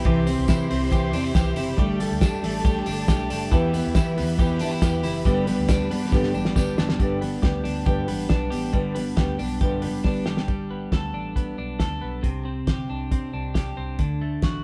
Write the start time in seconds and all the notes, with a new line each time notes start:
Already playing: B3 E4 G4 E5
0.05 C2 C3 E3 C4 E4 G4 C5 C6, kick, hi-hat pedal, ride
0.26 C4 E4 G4, open hi-hat, tambourine
0.39 C2
0.48 C3 E3 C4 E4 G4, kick, snare, hi-hat pedal, ride, tambourine
0.69 C2 C4 E4 G4, open hi-hat
0.90 C3 E3 C4 E4 G4, kick, hi-hat pedal, ride, tambourine
1.13 E2 C4 D4 E4 G4, open hi-hat, tambourine
1.24 E4
1.33 C2 E3 C4 E4 G4, kick, snare, hi-hat pedal, ride, tambourine
1.55 F#1 C4 E4 G4, open hi-hat, tambourine
1.76 G1 G3 A3 D4 G4 A4 D5 A5, kick, hi-hat pedal, ride
2.00 A3 D4 G4, open hi-hat, tambourine
2.11 D2
2.21 G3 A3 D4 G4, kick, snare, hi-hat pedal, ride, tambourine
2.42 A1 A3 D4 G4, open hi-hat
2.64 G3 A3 D4 G4, kick, hi-hat pedal, ride, tambourine
2.86 G1 A3 D4 G4, open hi-hat, tambourine
3.08 B1 G3 A3 D4 G4, kick, snare, hi-hat pedal, ride, tambourine
3.30 F#1 A3 D4 G4, open hi-hat, tambourine
3.52 E2 E3 B3 E4 G4 B4 E5 B5, kick, hi-hat pedal, ride, tambourine
3.73 B3 E4 G4, open hi-hat, tambourine
3.86 E2
3.94 E3 B3 E4 G4, kick, snare, hi-hat pedal, ride, tambourine
4.16 E2 B3 E4 G4, open hi-hat
4.38 E3 B3 E4 G4, kick, hi-hat pedal, ride, tambourine
4.59 G2 B3 D4 E4 G4, open hi-hat, tambourine
4.71 E4
4.81 E2 E3 B3 E4 G4, kick, snare, hi-hat pedal, ride, tambourine
5.03 F#1 B3 E4 G4, open hi-hat, tambourine
5.25 G1 G2 D3 G3 B3 D4 G4 D5, kick, hi-hat pedal, ride, tambourine
5.47 G3 B3 D4 G4, open hi-hat, tambourine
5.59 D2
5.68 G3 B3 D4 G4, kick, snare, hi-hat pedal, ride, tambourine
5.91 G2 G3 B3 D4 G4, open hi-hat
6.12 G2 D3 G3 B3 D4 G4, kick, snare, tambourine
6.23 snare
6.34 A1 G3 B3 D4 G4, tambourine
6.45 snare
6.56 G1 G3 B3 D4 G4, kick, snare, tambourine
6.78 F#1 G3 B3 D4 G4, snare, tambourine
6.89 snare
7.00 G1 G2 D3 G3 B3 D4 G4, kick, closed hi-hat
7.21 G3 B3 D4 G4, open hi-hat
7.42 D2 G3 B3 D4 G4, kick, snare, closed hi-hat
7.63 D2 G3 B3 D4 G4, open hi-hat
7.86 G2 D3 G3 B3 D4 G4, kick, closed hi-hat
8.07 A1 G3 B3 D4 G4, open hi-hat
8.29 B1 G3 B3 D4 G4, kick, snare, closed hi-hat
8.51 A1 G3 B3 D4 G4, open hi-hat
8.73 G1 G2 D3 G3 B3 D4 G4, kick, closed hi-hat
8.96 G3 B3 D4 G4, open hi-hat
9.17 D2 G3 B3 D4 G4, kick, snare, closed hi-hat
9.39 B1 G3 B3 D4 G4, open hi-hat
9.61 G2 D3 G3 B3 D4 G4, kick, closed hi-hat
9.82 F#1 B3 D4 G4, open hi-hat
9.86 G3
10.04 G1 G3 B3 D4 G4, kick, snare
10.26 G1 G3 B3 D4 G4, snare
10.37 snare
10.48 G1 G3, kick, closed hi-hat
10.70 B3
10.92 D2 A4, kick, snare, closed hi-hat
11.14 A1 D4
11.36 B3, kick, closed hi-hat
11.58 B1 D4
11.79 D2 A4, kick, snare, closed hi-hat
12.01 B1 B3
12.23 C2 C3, kick, closed hi-hat
12.45 C4
12.67 G1 G4, kick, snare, closed hi-hat
12.90 C2 D4
13.11 C3 C4, kick, closed hi-hat
13.33 C2 D4
13.54 G4, kick, snare, closed hi-hat
13.77 C2 C4
13.99 D2 D3, kick, closed hi-hat
14.21 A3
14.42 A1 F#4, kick, snare, closed hi-hat